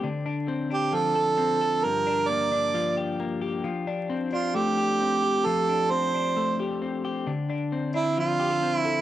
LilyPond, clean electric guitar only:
\new Staff \with { instrumentName = "Clean electric guitar" } { \time 4/4 \key f \major \tempo 4 = 133 d8 d'8 c'8 d'8 f8 a'8 c'8 a'8 | g,8 d'8 bes8 d'8 f8 g'8 bes8 g'8 | f8 d'8 c'8 d'8 a8 g'8 c'8 g'8 | f8 d'8 c'8 d'8 a8 g'8 c'8 g'8 |
d8 d'8 c'8 d'8 f8 g'16 a'16 c'8 a'8 | }